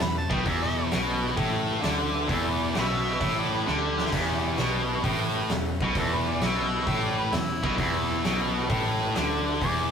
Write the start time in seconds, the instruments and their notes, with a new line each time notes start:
0.00 picked electric bass E1, distorted electric guitar E2, tonewheel organ E4 G4 B4, harmonica B5, snare, open hi-hat
0.18 harmonica A5
0.28 picked electric bass B1, distorted electric guitar B2, tonewheel organ E4 G4 B4, kick
0.33 harmonica G5
0.44 picked electric bass E1, distorted electric guitar E2, tonewheel organ E4 G4 D5, kick, open hi-hat
0.49 harmonica E5
0.62 harmonica E5
0.77 tonewheel organ E4 G4 A4
0.91 picked electric bass B1, distorted electric guitar B2, tonewheel organ E4 G4 B4, snare, open hi-hat
1.21 tonewheel organ E4 G4 B4
1.36 picked electric bass A1, distorted electric guitar A2, tonewheel organ E4 G4 A4, kick, open hi-hat
1.69 tonewheel organ E4 G4 B4
1.82 picked electric bass D2, distorted electric guitar D3, tonewheel organ E4 G4 D5, snare, open hi-hat
2.14 tonewheel organ E4 G4 B4
2.28 picked electric bass E1, distorted electric guitar E2, tonewheel organ E4 G4 D5, harmonica E4 A4, kick, open hi-hat
2.49 harmonica B4
2.59 tonewheel organ E4 G4 B4, harmonica D5
2.74 picked electric bass B1, distorted electric guitar B2, tonewheel organ E4 G4 B4, snare, open hi-hat
2.79 harmonica G4 B4 E5
3.07 tonewheel organ E4 G4 B4
3.21 picked electric bass A1, distorted electric guitar A2, tonewheel organ E4 G4 D5, kick, open hi-hat
3.39 harmonica D5
3.52 harmonica D4 G4 B4, tonewheel organ E4 G4 D5
3.65 picked electric bass D2, distorted electric guitar D3, tonewheel organ E4 G4 D5, snare
3.71 harmonica G4
3.98 tonewheel organ E4 G4 B4, snare
4.06 snare
4.11 picked electric bass E1, distorted electric guitar E2, tonewheel organ E4 G4 B4, kick, open hi-hat, splash
4.43 tonewheel organ E4 G4 D5
4.57 picked electric bass B1, distorted electric guitar B2, tonewheel organ E4 G4 B4, snare, open hi-hat
4.88 tonewheel organ E4 G4 B4
5.04 picked electric bass A1, distorted electric guitar A2, tonewheel organ E4 G4 B4, kick, open hi-hat
5.33 tonewheel organ E4 G4 B4
5.49 picked electric bass E1, distorted electric guitar E2, tonewheel organ E4 G4 A4, snare, open hi-hat
5.80 picked electric bass B1, distorted electric guitar B2, tonewheel organ E4 G4 B4, kick
5.94 picked electric bass E1, distorted electric guitar E2, tonewheel organ E4 G4 B4, harmonica A4, kick, open hi-hat
6.13 harmonica B4
6.25 tonewheel organ E4 G4 B4
6.29 harmonica D5
6.41 picked electric bass B1, distorted electric guitar B2, tonewheel organ E4 G4 B4, snare, open hi-hat
6.45 harmonica E5
6.72 tonewheel organ E4 G4 B4
6.87 picked electric bass A1, distorted electric guitar A2, tonewheel organ E4 G4 A4, kick, open hi-hat
7.04 harmonica D5
7.19 tonewheel organ E4 G4 B4, harmonica B4
7.32 picked electric bass E1, distorted electric guitar E2, harmonica E4, tonewheel organ E4 G4 D5, snare, open hi-hat
7.63 picked electric bass B1, distorted electric guitar B2, tonewheel organ E4 G4 B4, kick
7.76 picked electric bass E1, distorted electric guitar E2, tonewheel organ E4 G4 B4, kick, open hi-hat
8.08 tonewheel organ E4 G4 B4
8.23 picked electric bass B1, distorted electric guitar B2, tonewheel organ E4 G4 A4, snare, open hi-hat
8.53 tonewheel organ E4 G4 B4
8.67 picked electric bass A1, distorted electric guitar A2, tonewheel organ E4 G4 B4, kick, open hi-hat
8.97 tonewheel organ E4 G4 B4
9.13 picked electric bass D2, distorted electric guitar D3, tonewheel organ E4 G4 B4, snare, open hi-hat
9.43 tonewheel organ E4 G4 B4
9.60 picked electric bass E1, distorted electric guitar E2, tonewheel organ E4 G4 B4, harmonica D6, kick, open hi-hat